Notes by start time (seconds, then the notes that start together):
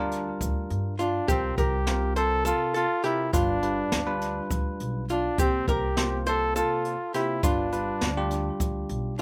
Already playing: D2 G3 D4 F4 A#4
0.11 closed hi-hat, shaker
0.41 D2, kick, closed hi-hat, shaker
0.70 G2, closed hi-hat
0.99 D4 F4, closed hi-hat, shaker
1.28 C2 C3 C4 F4 G4 A#4, kick, closed hi-hat, shaker
1.58 C2 G4 A#4, kick, closed hi-hat, shaker
1.87 C3 C4 F4 A#4, snare, closed hi-hat
2.16 A4 C5, closed hi-hat, shaker
2.45 F4 A4, closed hi-hat, shaker
2.74 F4 A4, closed hi-hat
3.04 C3 C4 E4 F4 G4 A#4, closed hi-hat
3.33 G1 G3 D4 F4 B4, kick, closed hi-hat, shaker
3.63 G3 D4 F4 B4, closed hi-hat
3.92 D2, snare, closed hi-hat, shaker
4.07 G3 D4 F4 B4
4.21 snare, closed hi-hat
4.50 D2, kick, closed hi-hat, shaker
4.80 B1, closed hi-hat
5.09 D4 F4, closed hi-hat, shaker
5.38 C2 C3 A#3 C4 F4 G4 C5, kick, closed hi-hat, shaker
5.68 C2 G4 A#4, kick, closed hi-hat, shaker
5.97 C3 A#3 F4 C5, snare, closed hi-hat
6.26 A4 C5, closed hi-hat, shaker
6.55 F4 A4, closed hi-hat, shaker
6.85 closed hi-hat
7.14 C3 A#3 E4 F4 G4 C5, snare, closed hi-hat, shaker
7.43 G1 G3 D4 F4 B4, kick, closed hi-hat, shaker
7.72 G3 D4 F4 B4, closed hi-hat, shaker
8.01 D2, snare, closed hi-hat
8.17 G3 D4 F4 G4
8.31 closed hi-hat, shaker
8.60 D2, kick, closed hi-hat, shaker
8.89 B1, closed hi-hat
9.18 D4, closed hi-hat